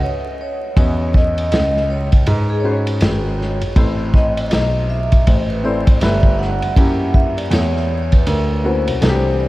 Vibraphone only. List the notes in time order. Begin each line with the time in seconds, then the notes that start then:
Already playing: B4
0.03 C#5
0.41 C#5
0.78 C#5
1.15 D#5
1.90 C#5
2.27 B4
2.50 G#4
2.60 C#5
2.65 B4
3.40 C#5
3.77 C5
4.15 D#5
4.90 E5
5.27 C5
5.50 B4
5.65 D5
6.01 E5
6.39 F#5
7.14 E5
7.37 D5
7.52 C#5
8.13 B4
8.27 A#4
8.50 B4
8.66 C5
9.40 D5